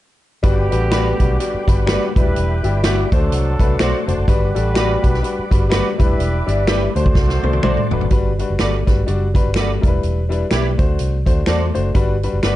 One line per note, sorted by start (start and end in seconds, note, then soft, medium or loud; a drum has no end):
0.43 0.67 G1 loud
0.43 1.86 D3 medium
0.43 0.62 G3 loud
0.43 1.86 B3 medium
0.43 0.63 D4 medium
0.43 0.63 F#4 medium
0.43 1.86 G4 medium
0.43 0.63 B4 loud
0.43 2.14 F#5 medium
0.43 3.09 G5 medium
0.43 2.14 B5 medium
0.43 2.14 D6 medium
0.43 kick loud
0.43 closed hi-hat medium
0.71 1.12 A1 medium
0.71 0.85 G3 medium
0.71 0.85 D4 medium
0.71 0.85 F#4 medium
0.71 0.86 B4 medium
0.71 closed hi-hat medium
0.91 1.10 G3 medium
0.91 1.11 D4 medium
0.91 1.11 F#4 medium
0.91 1.07 F#4 medium
0.91 1.11 B4 loud
0.91 1.07 B4 medium
0.91 1.08 D5 medium
0.91 finger snap medium
0.91 snare loud
0.91 closed hi-hat medium
1.20 1.36 B1 medium
1.20 1.34 G3 medium
1.20 1.34 D4 medium
1.20 1.34 F#4 medium
1.20 1.34 B4 medium
1.20 kick medium
1.20 closed hi-hat medium
1.40 1.59 G3 medium
1.40 1.59 D4 medium
1.40 1.59 F#4 medium
1.40 1.59 D5 medium
1.40 closed hi-hat loud
1.54 muted fingered electric bass stroke soft
1.67 1.96 G1 medium
1.67 1.81 G3 medium
1.67 1.81 D4 medium
1.67 1.82 F#4 medium
1.67 1.82 B4 medium
1.67 kick medium
1.67 closed hi-hat medium
1.86 2.06 G3 loud
1.86 2.06 D4 medium
1.86 2.06 F#4 medium
1.86 2.03 F#4 medium
1.86 2.07 B4 loud
1.86 2.03 B4 medium
1.86 2.04 D5 medium
1.86 finger snap loud
1.86 snare loud
1.86 closed hi-hat medium
2.15 2.24 E1 medium
2.15 2.21 F#3 medium
2.15 2.83 G3 medium
2.15 2.53 D4 medium
2.15 2.53 E4 medium
2.15 2.83 E4 medium
2.15 2.53 B4 medium
2.15 2.83 B4 medium
2.15 3.11 E5 medium
2.15 3.11 B5 medium
2.15 8.07 D6 medium
2.15 kick loud
2.15 closed hi-hat medium
2.21 2.55 G3 medium
2.26 2.34 D#1 medium
2.36 2.59 E1 medium
2.36 closed hi-hat medium
2.63 3.03 G1 medium
2.63 2.77 G3 medium
2.63 2.78 D4 medium
2.63 2.78 E4 medium
2.63 2.78 G4 medium
2.63 closed hi-hat medium
2.83 3.03 G3 medium
2.83 3.03 D4 medium
2.83 3.03 E4 medium
2.83 3.03 F#4 loud
2.83 2.99 G4 medium
2.83 2.99 B4 medium
2.83 2.99 D5 medium
2.83 finger snap medium
2.83 snare medium
2.83 closed hi-hat medium
3.12 3.28 D2 medium
3.12 4.06 F#3 medium
3.12 3.49 A3 medium
3.12 3.49 D4 medium
3.12 4.06 D4 medium
3.12 3.49 F#4 medium
3.12 4.06 A4 medium
3.12 3.50 C5 medium
3.12 5.97 F#5 medium
3.12 4.27 A5 medium
3.12 4.27 C6 medium
3.12 kick loud
3.12 closed hi-hat medium
3.31 3.55 C2 medium
3.31 closed hi-hat loud
3.59 3.76 C2 medium
3.59 3.74 A3 medium
3.59 3.74 D4 medium
3.59 3.74 F#4 medium
3.59 3.74 B4 medium
3.59 kick medium
3.59 closed hi-hat medium
3.79 3.92 B1 medium
3.79 3.99 A3 loud
3.79 3.99 D4 medium
3.79 3.95 F#4 medium
3.79 3.99 F#4 medium
3.79 3.99 C5 loud
3.79 3.95 C5 medium
3.79 3.96 D5 medium
3.79 finger snap loud
3.79 snare loud
3.79 closed hi-hat medium
4.07 4.16 F1 loud
4.07 4.21 A3 medium
4.07 4.21 D4 medium
4.07 4.21 F#4 medium
4.07 4.22 C5 medium
4.07 closed hi-hat medium
4.18 4.26 F#1 medium
4.28 4.51 G1 loud
4.28 4.47 G3 loud
4.28 5.69 G3 medium
4.28 4.47 D4 loud
4.28 4.47 F#4 loud
4.28 5.69 F#4 medium
4.28 5.69 B4 medium
4.28 4.47 B4 loud
4.28 6.93 D5 medium
4.28 5.98 B5 medium
4.28 kick loud
4.28 closed hi-hat medium
4.55 4.95 A1 medium
4.55 4.69 G3 medium
4.55 4.69 D4 medium
4.55 4.69 F#4 medium
4.55 4.69 A4 medium
4.55 closed hi-hat medium
4.74 4.94 G3 loud
4.74 4.94 D4 medium
4.74 4.95 F#4 loud
4.74 4.91 F#4 medium
4.74 4.95 B4 loud
4.74 4.91 B4 medium
4.74 4.92 D5 medium
4.74 finger snap medium
4.74 snare loud
4.74 closed hi-hat medium
5.02 5.20 B1 medium
5.02 5.16 G3 medium
5.02 5.17 D4 medium
5.02 5.17 F#4 medium
5.02 5.17 B4 medium
5.02 kick medium
5.02 closed hi-hat medium
5.14 snare soft
5.22 5.42 G3 medium
5.22 5.42 D4 medium
5.22 5.42 F#4 medium
5.22 5.42 B4 medium
5.22 closed hi-hat medium
5.39 muted fingered electric bass stroke soft
5.51 5.79 G1 medium
5.51 5.65 G3 medium
5.51 5.65 D4 medium
5.51 5.65 F#4 medium
5.51 5.65 B4 medium
5.51 kick medium
5.51 closed hi-hat medium
5.69 5.89 G3 loud
5.69 5.90 D4 medium
5.69 5.90 F#4 medium
5.69 5.86 F#4 medium
5.69 5.90 B4 loud
5.69 5.87 B4 medium
5.69 finger snap loud
5.69 snare loud
5.69 closed hi-hat medium
5.73 5.87 D5 medium
5.98 6.08 E1 medium
5.98 6.36 G3 medium
5.98 6.66 G3 medium
5.98 6.36 D4 medium
5.98 6.36 E4 medium
5.98 6.66 E4 medium
5.98 6.36 B4 loud
5.98 6.66 B4 medium
5.98 6.95 E5 medium
5.98 6.95 B5 medium
5.98 kick loud
5.98 closed hi-hat medium
6.10 6.18 D#1 medium
6.19 6.42 E1 medium
6.19 closed hi-hat medium
6.47 6.87 G1 medium
6.47 6.61 G3 medium
6.47 6.61 D4 medium
6.47 6.61 E4 medium
6.47 6.61 D5 medium
6.47 closed hi-hat medium
6.67 6.86 G3 loud
6.67 6.87 D4 medium
6.67 6.86 E4 medium
6.67 6.82 G4 medium
6.67 6.87 B4 loud
6.67 6.83 B4 medium
6.67 6.83 D5 medium
6.67 finger snap medium
6.67 snare loud
6.67 closed hi-hat medium
6.95 7.12 D2 medium
6.95 7.32 A3 medium
6.95 7.89 A3 medium
6.95 7.32 D4 medium
6.95 7.89 F#4 medium
6.95 7.32 F#4 medium
6.95 7.89 C5 medium
6.95 7.33 C5 medium
6.95 8.10 F#5 medium
6.95 8.10 A5 medium
6.95 8.10 C6 medium
6.95 closed hi-hat medium
7.06 kick medium
7.15 7.38 C2 medium
7.15 kick loud
7.15 snare medium
7.29 snare soft
7.43 7.59 C2 medium
7.43 7.57 A3 medium
7.43 7.57 D4 medium
7.43 7.57 F#4 medium
7.43 7.57 C5 medium
7.43 high tom medium
7.53 high tom medium
7.63 7.75 B1 medium
7.63 7.82 A3 medium
7.63 7.82 D4 medium
7.63 7.78 F#4 medium
7.63 7.82 F#4 medium
7.63 7.78 C5 medium
7.63 7.83 C5 loud
7.63 7.79 D5 medium
7.63 finger snap medium
7.63 mid tom medium
7.77 mid tom medium
7.91 7.99 F1 medium
7.91 8.05 A3 medium
7.91 8.05 D4 medium
7.91 8.05 F#4 medium
7.91 8.06 B4 medium
7.91 floor tom medium
8.01 8.10 F#1 medium
8.01 floor tom medium
8.10 8.42 G1 medium
8.10 8.30 G3 medium
8.10 8.30 D4 medium
8.10 8.30 F#4 medium
8.10 8.31 B4 loud
8.10 kick medium
8.10 closed hi-hat medium
8.39 8.52 G3 medium
8.39 8.53 D4 medium
8.39 8.53 F#4 medium
8.39 8.53 B4 medium
8.39 closed hi-hat medium
8.50 8.58 F#1 medium
8.59 8.83 G1 medium
8.59 8.78 G3 medium
8.59 8.78 D4 medium
8.59 8.74 F#4 medium
8.59 8.78 F#4 medium
8.59 8.78 A4 medium
8.59 8.74 B4 medium
8.59 8.75 D5 medium
8.59 finger snap medium
8.59 snare medium
8.59 closed hi-hat medium
8.87 9.03 G1 medium
8.87 9.00 G3 medium
8.87 9.00 D4 medium
8.87 9.01 F#4 medium
8.87 9.01 B4 medium
8.87 kick medium
8.87 snare soft
8.87 closed hi-hat medium
9.06 9.39 F#1 medium
9.06 9.26 G3 medium
9.06 9.26 D4 medium
9.06 9.26 F#4 medium
9.06 9.26 D5 medium
9.06 closed hi-hat medium
9.34 9.48 G3 medium
9.34 9.48 D4 medium
9.34 9.49 F#4 medium
9.34 9.49 B4 medium
9.34 kick medium
9.34 closed hi-hat medium
9.46 9.77 G1 medium
9.54 9.74 G3 medium
9.54 9.74 D4 medium
9.54 9.74 F#4 medium
9.54 9.70 F#4 medium
9.54 9.74 A4 medium
9.54 9.71 B4 medium
9.54 9.71 D5 medium
9.54 finger snap medium
9.54 snare loud
9.54 closed hi-hat medium
9.81 10.00 E1 medium
9.81 10.19 G3 medium
9.81 10.19 D4 medium
9.81 10.19 E4 medium
9.81 9.87 A#4 medium
9.81 kick medium
9.81 closed hi-hat medium
9.88 10.22 B4 medium
10.03 10.43 E1 medium
10.03 closed hi-hat medium
10.29 10.44 G3 medium
10.29 10.44 D4 medium
10.29 10.44 E4 medium
10.29 10.44 B4 medium
10.29 closed hi-hat medium
10.50 10.74 B1 medium
10.50 10.70 G3 medium
10.50 10.70 D4 medium
10.50 10.66 E4 medium
10.50 10.70 E4 medium
10.50 10.66 G4 medium
10.50 10.70 B4 medium
10.50 10.67 D5 medium
10.50 finger snap medium
10.50 snare loud
10.50 closed hi-hat medium
10.78 10.95 D2 medium
10.78 11.15 A3 medium
10.78 11.15 D4 medium
10.78 11.16 F#4 medium
10.78 11.16 C5 medium
10.78 kick medium
10.78 closed hi-hat medium
10.99 11.22 C2 medium
10.99 closed hi-hat medium
11.26 11.43 D2 medium
11.26 11.40 A3 medium
11.26 11.40 D4 medium
11.26 11.40 F#4 medium
11.26 11.40 C5 medium
11.26 kick medium
11.26 closed hi-hat medium
11.46 11.70 E2 medium
11.46 11.66 A3 medium
11.46 11.66 D4 medium
11.46 11.62 F#4 medium
11.46 11.66 F#4 medium
11.46 11.66 C5 medium
11.46 11.62 C5 medium
11.46 11.63 D5 medium
11.46 11.92 A5 medium
11.46 finger snap medium
11.46 snare loud
11.46 closed hi-hat medium
11.74 11.92 F#1 medium
11.74 11.88 A3 medium
11.74 11.88 D4 medium
11.74 11.88 F#4 medium
11.74 11.88 C5 medium
11.74 closed hi-hat medium
11.94 12.26 G1 loud
11.94 12.14 G3 loud
11.94 12.14 D4 loud
11.94 12.14 F#4 medium
11.94 12.15 B4 loud
11.94 kick medium
11.94 closed hi-hat medium
12.23 12.37 G3 medium
12.23 12.37 D4 medium
12.23 12.37 F#4 medium
12.23 12.37 B4 medium
12.23 closed hi-hat medium
12.33 12.41 F#1 medium
12.43 12.56 G1 medium
12.43 12.56 G3 medium
12.43 12.56 D4 medium
12.43 12.56 F#4 medium
12.43 12.56 B4 medium
12.43 12.56 D5 medium
12.43 finger snap medium
12.43 snare medium
12.43 closed hi-hat medium